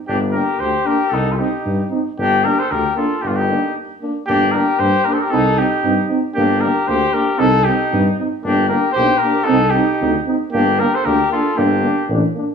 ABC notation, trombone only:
X:1
M:2/4
L:1/8
Q:1/4=115
K:Gm
V:1 name="Trombone"
z D z D | z E z E | z D z D | z D z D |
D D D D | E E E E | D D D D | E E E E |
D D D D | E E E E | D D D D | D D D D |]